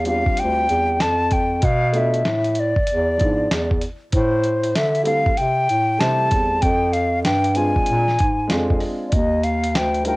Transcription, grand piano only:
0, 0, Header, 1, 2, 480
1, 0, Start_track
1, 0, Tempo, 625000
1, 1250, Time_signature, 4, 2, 24, 8
1, 7806, End_track
2, 0, Start_track
2, 0, Title_t, "Grand piano"
2, 0, Program_c, 0, 0
2, 31, Note_on_c, 0, 55, 59
2, 37, Note_on_c, 0, 60, 58
2, 45, Note_on_c, 0, 62, 57
2, 51, Note_on_c, 0, 65, 59
2, 59, Note_on_c, 0, 67, 70
2, 726, Note_off_c, 0, 55, 0
2, 729, Note_off_c, 0, 60, 0
2, 733, Note_off_c, 0, 62, 0
2, 736, Note_off_c, 0, 65, 0
2, 740, Note_off_c, 0, 67, 0
2, 1477, Note_on_c, 0, 57, 74
2, 1485, Note_on_c, 0, 59, 70
2, 1491, Note_on_c, 0, 62, 64
2, 1495, Note_on_c, 0, 65, 66
2, 1505, Note_on_c, 0, 69, 81
2, 1673, Note_off_c, 0, 57, 0
2, 1677, Note_off_c, 0, 59, 0
2, 1679, Note_off_c, 0, 62, 0
2, 1681, Note_off_c, 0, 65, 0
2, 1686, Note_off_c, 0, 69, 0
2, 2437, Note_on_c, 0, 53, 63
2, 2444, Note_on_c, 0, 59, 63
2, 2450, Note_on_c, 0, 62, 65
2, 2457, Note_on_c, 0, 64, 62
2, 2463, Note_on_c, 0, 68, 73
2, 2633, Note_off_c, 0, 53, 0
2, 2636, Note_off_c, 0, 59, 0
2, 2639, Note_off_c, 0, 62, 0
2, 2643, Note_off_c, 0, 64, 0
2, 2645, Note_off_c, 0, 68, 0
2, 3868, Note_on_c, 0, 55, 72
2, 3878, Note_on_c, 0, 57, 68
2, 3881, Note_on_c, 0, 60, 66
2, 3889, Note_on_c, 0, 64, 68
2, 3896, Note_on_c, 0, 69, 83
2, 4068, Note_off_c, 0, 55, 0
2, 4073, Note_off_c, 0, 57, 0
2, 4074, Note_off_c, 0, 60, 0
2, 4078, Note_off_c, 0, 64, 0
2, 4082, Note_off_c, 0, 69, 0
2, 4597, Note_on_c, 0, 55, 74
2, 4602, Note_on_c, 0, 57, 62
2, 4611, Note_on_c, 0, 60, 63
2, 4618, Note_on_c, 0, 64, 68
2, 4624, Note_on_c, 0, 72, 81
2, 5083, Note_off_c, 0, 55, 0
2, 5086, Note_off_c, 0, 57, 0
2, 5090, Note_off_c, 0, 60, 0
2, 5094, Note_off_c, 0, 64, 0
2, 5097, Note_off_c, 0, 72, 0
2, 5794, Note_on_c, 0, 56, 69
2, 5798, Note_on_c, 0, 60, 66
2, 5806, Note_on_c, 0, 62, 66
2, 5812, Note_on_c, 0, 65, 72
2, 5819, Note_on_c, 0, 68, 76
2, 6166, Note_off_c, 0, 56, 0
2, 6168, Note_off_c, 0, 60, 0
2, 6172, Note_off_c, 0, 62, 0
2, 6175, Note_off_c, 0, 65, 0
2, 6178, Note_off_c, 0, 68, 0
2, 6508, Note_on_c, 0, 56, 82
2, 6516, Note_on_c, 0, 60, 76
2, 6521, Note_on_c, 0, 62, 75
2, 6529, Note_on_c, 0, 65, 76
2, 6538, Note_on_c, 0, 68, 89
2, 6999, Note_off_c, 0, 56, 0
2, 7003, Note_off_c, 0, 60, 0
2, 7005, Note_off_c, 0, 62, 0
2, 7009, Note_off_c, 0, 65, 0
2, 7014, Note_off_c, 0, 68, 0
2, 7708, Note_on_c, 0, 55, 71
2, 7714, Note_on_c, 0, 62, 63
2, 7722, Note_on_c, 0, 63, 59
2, 7727, Note_on_c, 0, 65, 65
2, 7736, Note_on_c, 0, 70, 78
2, 7806, Note_off_c, 0, 55, 0
2, 7806, Note_off_c, 0, 62, 0
2, 7806, Note_off_c, 0, 63, 0
2, 7806, Note_off_c, 0, 65, 0
2, 7806, Note_off_c, 0, 70, 0
2, 7806, End_track
0, 0, End_of_file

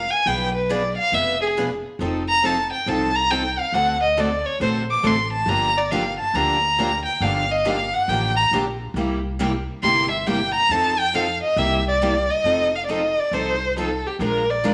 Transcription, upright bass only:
0, 0, Header, 1, 2, 480
1, 0, Start_track
1, 0, Tempo, 435414
1, 289, Time_signature, 4, 2, 24, 8
1, 16248, End_track
2, 0, Start_track
2, 0, Title_t, "Upright bass"
2, 0, Program_c, 0, 32
2, 285, Note_on_c, 0, 35, 81
2, 1051, Note_off_c, 0, 35, 0
2, 1235, Note_on_c, 0, 29, 81
2, 2004, Note_off_c, 0, 29, 0
2, 2194, Note_on_c, 0, 29, 80
2, 2962, Note_off_c, 0, 29, 0
2, 3156, Note_on_c, 0, 36, 77
2, 3922, Note_off_c, 0, 36, 0
2, 4106, Note_on_c, 0, 38, 77
2, 4875, Note_off_c, 0, 38, 0
2, 5071, Note_on_c, 0, 34, 77
2, 5479, Note_off_c, 0, 34, 0
2, 5549, Note_on_c, 0, 33, 76
2, 5957, Note_off_c, 0, 33, 0
2, 6018, Note_on_c, 0, 31, 82
2, 6791, Note_off_c, 0, 31, 0
2, 6984, Note_on_c, 0, 38, 78
2, 7756, Note_off_c, 0, 38, 0
2, 7942, Note_on_c, 0, 31, 81
2, 8715, Note_off_c, 0, 31, 0
2, 8906, Note_on_c, 0, 33, 81
2, 9318, Note_off_c, 0, 33, 0
2, 9386, Note_on_c, 0, 34, 74
2, 9798, Note_off_c, 0, 34, 0
2, 9856, Note_on_c, 0, 36, 84
2, 10633, Note_off_c, 0, 36, 0
2, 10833, Note_on_c, 0, 31, 79
2, 11605, Note_off_c, 0, 31, 0
2, 11787, Note_on_c, 0, 41, 79
2, 12562, Note_off_c, 0, 41, 0
2, 12748, Note_on_c, 0, 36, 90
2, 13524, Note_off_c, 0, 36, 0
2, 13714, Note_on_c, 0, 29, 78
2, 14489, Note_off_c, 0, 29, 0
2, 14677, Note_on_c, 0, 36, 72
2, 15452, Note_off_c, 0, 36, 0
2, 15644, Note_on_c, 0, 34, 77
2, 16248, Note_off_c, 0, 34, 0
2, 16248, End_track
0, 0, End_of_file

